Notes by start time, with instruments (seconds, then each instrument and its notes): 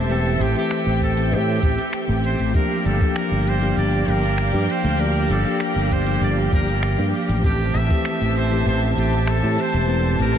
Already playing: fretless electric bass E1, string section G4 C5 E5
0.08 tine electric piano E3 A3 C4 G4, muted trumpet A4, string section G5, open hi-hat, shaker
0.26 shaker
0.39 fretless electric bass A1, muted trumpet G4, shaker
0.54 tine electric piano E3 A3 C4 G4, muted trumpet G4, open hi-hat, shaker
0.71 finger snap, open hi-hat, shaker
0.86 fretless electric bass A1, shaker
1.01 muted trumpet A4, kick, shaker
1.16 tine electric piano E3 A3 C4 G4, open hi-hat, shaker
1.31 fretless electric bass A2, muted trumpet G4, open hi-hat, shaker
1.61 fretless electric bass A1, tine electric piano E3 A3 C4 G4, kick, shaker
1.78 open hi-hat, shaker
1.93 finger snap, open hi-hat, shaker
2.07 fretless electric bass A1, tine electric piano E3 A3 C4 G4
2.24 muted trumpet C5, shaker
2.39 fretless electric bass A1, open hi-hat, shaker
2.53 tine electric piano F3 A#3 D4 G4, muted trumpet A#4, string section D5 F5 G5, kick, open hi-hat, shaker
2.70 shaker
2.85 fretless electric bass G1, muted trumpet A4, shaker
3.00 tine electric piano F3 A#3 D4 G4, kick, open hi-hat, shaker
3.16 muted trumpet A#4, finger snap, open hi-hat, shaker
3.31 fretless electric bass G1, shaker
3.46 muted trumpet C5, shaker
3.60 tine electric piano F3 A#3 D4 G4, open hi-hat, shaker
3.77 fretless electric bass G1, muted trumpet D5, open hi-hat, shaker
4.06 fretless electric bass G1, tine electric piano F3 A#3 D4 G4, shaker
4.10 muted trumpet A#4
4.24 open hi-hat, shaker
4.38 finger snap, open hi-hat, shaker
4.52 fretless electric bass G2, tine electric piano F3 A#3 D4 G4
4.69 muted trumpet C5, shaker
4.84 fretless electric bass D2, open hi-hat, shaker
4.98 tine electric piano F3 A#3 D4 G4, muted trumpet A#4, open hi-hat, shaker
5.15 shaker
5.29 fretless electric bass G1, muted trumpet A4, shaker
5.44 tine electric piano F3 A#3 D4 G4, open hi-hat, shaker
5.60 muted trumpet A#4, finger snap, open hi-hat, shaker
5.75 fretless electric bass G1, shaker
5.91 muted trumpet C5, kick, shaker
6.05 tine electric piano F3 A#3 D4 G4, open hi-hat, shaker
6.21 fretless electric bass G1, muted trumpet D5, open hi-hat, shaker
6.50 fretless electric bass G1, tine electric piano F3 A#3 D4 G4, kick, shaker
6.55 muted trumpet A#4
6.68 open hi-hat, shaker
6.83 finger snap, open hi-hat, shaker
6.97 fretless electric bass G2, tine electric piano F3 A#3 D4 G4
7.14 shaker
7.29 fretless electric bass A1, open hi-hat, shaker
7.42 tine electric piano E3 A3 C4 G4, muted trumpet G4, string section C5 E5 A5, kick, open hi-hat, shaker
7.60 shaker
7.74 fretless electric bass A1, muted trumpet E5, shaker
7.88 tine electric piano E3 A3 C4 G4, kick, open hi-hat, shaker
8.05 finger snap, open hi-hat, shaker
8.21 fretless electric bass A1, shaker
8.36 muted trumpet C5, shaker
8.50 tine electric piano E3 A3 C4 G4, open hi-hat, shaker
8.66 fretless electric bass A1, muted trumpet C5, open hi-hat, shaker
8.95 fretless electric bass A1, tine electric piano E3 A3 C4 G4, muted trumpet G4, shaker
9.13 open hi-hat, shaker
9.27 muted trumpet A4, finger snap, open hi-hat, shaker
9.42 fretless electric bass A2, tine electric piano E3 A3 C4 G4
9.58 muted trumpet C5, shaker
9.74 fretless electric bass E1, open hi-hat, shaker
9.87 tine electric piano E3 A3 C4 G4, string section D5, open hi-hat, shaker
10.05 shaker
10.19 fretless electric bass A1, muted trumpet A#4, shaker
10.34 tine electric piano E3 A3, open hi-hat